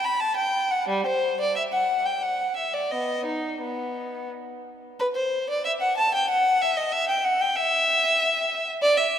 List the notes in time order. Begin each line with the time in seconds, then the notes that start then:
0.05 B5
0.20 A5
0.36 G5
0.71 F#5
0.88 G3
1.06 C5
1.40 D5
1.56 E5
1.73 F#5
2.05 G5
2.22 F#5
2.56 E5
2.73 D5
2.91 B3 D#5
3.25 D#4
3.61 B3
5.00 B4
5.15 C5
5.50 D5
5.65 E5
5.81 F#5
5.97 A5
6.14 G5
6.30 F#5
6.61 E5
6.77 D#5
6.92 E5
7.08 G5
7.24 F#5
7.41 G5
7.56 E5
8.82 D5
8.97 E5